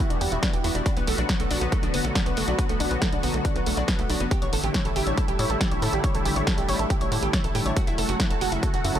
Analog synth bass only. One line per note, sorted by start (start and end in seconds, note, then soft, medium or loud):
0.10 0.17 E1 medium
0.21 0.28 E2 medium
0.32 0.38 E1 medium
0.53 0.60 E1 medium
0.64 0.71 E2 loud
0.75 0.82 E1 medium
0.97 1.03 B1 medium
1.07 1.14 B1 medium
1.18 1.25 B1 medium
1.40 1.46 B1 medium
1.51 1.57 B1 loud
1.61 1.68 B1 medium
1.83 1.90 B1 medium
1.94 2.00 F#1 loud
2.05 2.11 B1 medium
2.26 2.33 B1 medium
2.37 2.44 F#1 loud
2.48 2.54 B1 medium
2.69 2.76 B1 medium
2.80 2.87 B1 loud
2.91 2.98 B1 medium
3.13 3.19 B1 medium
3.23 3.30 B1 medium
3.34 3.41 B1 medium
3.56 3.62 B1 medium
3.66 3.73 B1 loud
3.77 3.84 B1 medium
3.99 4.05 B1 medium
4.10 4.16 B1 loud
4.20 4.27 F#1 medium
4.42 4.49 A1 medium
4.53 4.59 A1 loud
4.64 4.70 A1 medium
4.85 4.92 A1 medium
4.96 5.02 A1 loud
5.07 5.13 A1 medium
5.28 5.35 A1 medium
5.39 5.46 A2 loud
5.50 5.56 A1 medium
5.71 5.78 A1 medium
5.82 5.89 A2 loud
5.93 6.00 A1 medium
6.15 6.21 A1 medium
6.25 6.32 A1 loud
6.36 6.43 A1 medium
6.58 6.64 A1 medium
6.69 6.75 A1 loud
6.79 6.86 A1 medium
7.01 7.08 A1 medium
7.12 7.18 A2 medium
7.23 7.29 A1 medium
7.44 7.51 A1 medium
7.55 7.61 A2 loud
7.66 7.72 A1 medium
7.87 7.94 F#1 medium
7.98 8.05 F#1 loud
8.09 8.15 F#1 medium
8.30 8.37 F#1 medium
8.41 8.48 F#1 loud
8.52 8.59 F#1 medium
8.74 8.80 F#1 medium
8.85 8.91 F#2 loud
8.95 8.99 F#1 medium